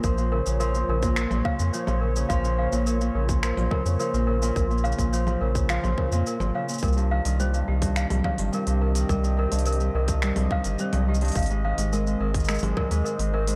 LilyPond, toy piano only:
\new Staff \with { instrumentName = "Toy piano" } { \time 4/4 \key bes \dorian \tempo 4 = 106 bes'8 bes'8 bes'8 bes'8 bes'8 f''8 des''8 bes'8 | f''8 f''8 bes'8 bes'8 bes'8 bes'8 bes'8 bes'8 | bes'8 f''8 des''8 bes'8 f''8 bes'8 bes'8 f''8 | bes'8 f''8 c''8 g'8 f''8 f''8 bes'8 bes'8 |
bes'8 bes'8 bes'8 bes'8 bes'8 f''8 c''8 g'8 | f''8 f''8 bes'8 bes'8 bes'8 bes'8 bes'8 bes'8 | }